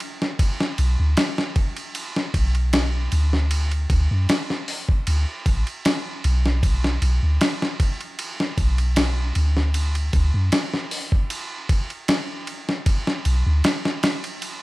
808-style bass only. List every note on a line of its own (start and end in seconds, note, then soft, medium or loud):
0.79 0.97 B1 loud
0.99 1.15 D2 medium
2.34 3.09 B1 medium
3.12 3.87 D2 medium
3.90 4.08 D2 loud
4.11 4.27 F#2 medium
5.08 5.25 D2 medium
5.46 5.64 A1 medium
6.25 6.99 B1 loud
7.02 7.20 B1 loud
7.23 7.39 D2 medium
8.58 9.32 B1 loud
9.36 10.10 D2 medium
10.14 10.32 D2 loud
10.34 10.50 F#2 medium
13.26 13.44 B1 loud
13.46 13.62 D2 loud